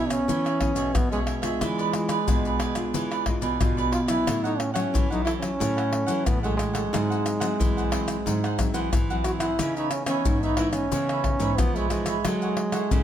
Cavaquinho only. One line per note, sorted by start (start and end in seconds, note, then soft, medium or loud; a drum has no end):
0.00 0.26 E4 medium
0.00 0.27 G#4 medium
0.00 0.27 C#5 medium
0.00 0.27 E5 medium
0.28 0.43 E4 soft
0.28 0.44 G#4 soft
0.28 0.44 C#5 medium
0.28 0.43 E5 medium
0.45 0.59 G#4 soft
0.45 0.59 C#5 medium
0.45 0.60 E5 medium
0.60 muted cavaquinho stroke soft
0.75 1.10 G#4 soft
0.75 1.09 C#5 medium
0.75 1.09 E5 medium
1.12 1.26 G#4 soft
1.12 1.27 C#5 medium
1.12 1.27 E5 medium
1.26 1.42 E4 soft
1.26 1.43 G#4 soft
1.26 1.42 C#5 soft
1.26 1.41 E5 soft
1.42 1.60 G#4 soft
1.42 1.59 C#5 medium
1.42 1.59 E5 medium
1.61 1.77 E4 soft
1.61 1.77 G#4 soft
1.61 1.77 B4 medium
1.61 1.77 D5 medium
1.78 1.93 G#4 medium
1.78 1.93 B4 medium
1.78 1.94 D5 medium
2.08 2.26 G#4 medium
2.08 2.26 B4 medium
2.08 2.25 D5 medium
2.28 2.43 E4 medium
2.28 2.43 G#4 medium
2.28 2.44 B4 medium
2.28 2.44 D5 medium
2.45 2.59 G#4 medium
2.45 2.60 B4 medium
2.45 2.60 D5 medium
2.59 2.92 E4 medium
2.59 2.93 G#4 medium
2.59 2.93 B4 medium
2.59 2.93 D5 medium
2.94 3.09 E4 soft
2.94 3.10 G#4 soft
2.94 3.10 B4 soft
2.94 3.10 D5 soft
3.11 3.25 G#4 soft
3.11 3.25 B4 medium
3.11 3.26 D5 medium
3.26 muted cavaquinho stroke soft
3.41 3.76 G#4 soft
3.41 3.75 B4 medium
3.41 3.75 D5 medium
3.77 3.92 G#4 soft
3.77 3.92 B4 medium
3.77 3.92 D5 medium
3.92 4.08 E4 soft
3.92 4.09 G#4 medium
3.92 4.08 B4 soft
3.92 4.06 D5 soft
4.08 4.26 G#4 medium
4.08 4.25 B4 medium
4.08 4.24 D5 medium
4.26 4.42 E4 soft
4.26 4.43 A4 soft
4.26 4.43 C#5 medium
4.26 4.43 F#5 medium
4.44 4.58 A4 medium
4.44 4.58 C#5 medium
4.44 4.59 F#5 medium
4.58 muted cavaquinho stroke soft
4.74 4.92 A4 medium
4.74 4.91 C#5 medium
4.74 4.91 F#5 medium
4.93 5.09 E4 soft
4.93 5.09 A4 medium
4.93 5.09 C#5 medium
4.93 5.09 F#5 medium
5.10 5.24 A4 soft
5.10 5.25 C#5 medium
5.10 5.26 F#5 medium
5.25 5.58 E4 medium
5.25 5.58 A4 medium
5.25 5.58 C#5 medium
5.25 5.59 F#5 medium
5.59 5.75 E4 soft
5.59 5.75 A4 soft
5.59 5.76 C#5 soft
5.59 5.75 F#5 soft
5.77 5.91 A4 medium
5.77 5.91 C#5 medium
5.77 5.91 F#5 medium
5.91 muted cavaquinho stroke soft
6.06 6.41 A4 medium
6.06 6.41 C#5 medium
6.06 6.40 F#5 medium
6.43 6.58 A4 medium
6.43 6.58 C#5 medium
6.43 6.58 F#5 medium
6.58 6.74 E4 soft
6.58 6.75 A4 soft
6.58 6.73 C#5 soft
6.58 6.72 F#5 soft
6.73 6.91 A4 medium
6.73 6.91 C#5 medium
6.73 6.90 F#5 medium
6.93 7.08 E4 medium
6.93 7.09 G#4 medium
6.93 7.09 C5 medium
6.93 7.09 F#5 medium
7.10 7.24 G#4 medium
7.10 7.25 C5 medium
7.10 7.25 F#5 medium
7.40 7.58 G#4 medium
7.40 7.57 C5 medium
7.40 7.57 F#5 medium
7.59 7.75 E4 soft
7.59 7.75 G#4 soft
7.59 7.75 C5 soft
7.59 7.76 F#5 medium
7.77 7.90 G#4 medium
7.77 7.91 C5 medium
7.77 7.92 F#5 medium
7.91 8.24 E4 medium
7.91 8.24 G#4 medium
7.91 8.25 C5 medium
7.91 8.25 F#5 medium
8.26 8.41 E4 soft
8.26 8.42 G#4 soft
8.26 8.42 C5 soft
8.26 8.42 F#5 soft
8.44 8.58 G#4 soft
8.44 8.58 C5 medium
8.44 8.58 F#5 medium
8.58 muted cavaquinho stroke soft
8.74 9.08 G#4 medium
8.74 9.07 C5 medium
8.74 9.07 F#5 medium
9.10 9.25 G#4 medium
9.10 9.25 C5 medium
9.10 9.25 F#5 medium
9.25 9.41 E4 soft
9.25 9.41 G#4 soft
9.25 9.41 C5 medium
9.25 9.39 F#5 soft
9.40 9.58 G#4 soft
9.40 9.57 C5 medium
9.40 9.57 F#5 medium
9.59 9.74 E4 soft
9.59 9.75 B4 medium
9.59 9.75 C#5 medium
9.59 9.76 E5 medium
9.77 9.92 B4 medium
9.77 9.92 C#5 medium
9.77 9.91 E5 medium
9.92 muted cavaquinho stroke soft
10.08 10.25 B4 medium
10.08 10.24 C#5 medium
10.08 10.23 E5 medium
10.26 10.41 E4 medium
10.26 10.42 B4 medium
10.26 10.42 C#5 medium
10.26 10.42 E5 soft
10.44 10.58 B4 soft
10.44 10.59 C#5 medium
10.44 10.58 E5 medium
10.58 10.90 E4 medium
10.58 10.91 B4 medium
10.58 10.91 C#5 medium
10.58 10.91 E5 medium
10.92 11.07 E4 soft
10.92 11.08 B4 soft
10.92 11.08 C#5 soft
10.92 11.09 E5 soft
11.10 11.24 B4 medium
11.10 11.24 C#5 medium
11.10 11.24 E5 medium
11.25 muted cavaquinho stroke soft
11.40 11.74 B4 medium
11.40 11.73 C#5 medium
11.40 11.73 E5 medium
11.76 11.90 B4 medium
11.76 11.91 C#5 medium
11.76 11.91 E5 medium
11.90 12.06 E4 soft
11.90 12.07 B4 soft
11.90 12.06 C#5 medium
11.90 12.05 E5 soft
12.06 12.24 B4 medium
12.06 12.23 C#5 medium
12.06 12.22 E5 medium
12.25 12.40 E4 soft
12.25 12.41 A4 medium
12.25 12.41 C#5 medium
12.25 12.41 F#5 medium
12.42 12.57 A4 medium
12.42 12.57 C#5 medium
12.42 12.57 F#5 medium
12.57 muted cavaquinho stroke soft
12.72 12.90 A4 medium
12.72 12.89 C#5 medium
12.72 12.89 F#5 medium
12.92 13.03 E4 soft
12.92 13.03 A4 soft
12.92 13.03 C#5 soft
12.92 13.03 F#5 medium